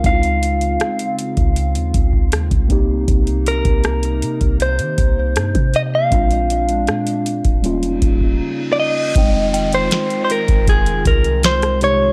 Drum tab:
HH |xxxxxxxxxxx-xxx-|xxxxxxxxxxx-xxx-|xxxxxxxxxxx-----|x-xxxxxxxxxxxxx-|
SD |----r-------r---|----r-------r---|----r-----------|----o-------or--|
BD |o------o--oo-oo-|o--o---o--o--o--|o------o--oo----|o------oo-o-----|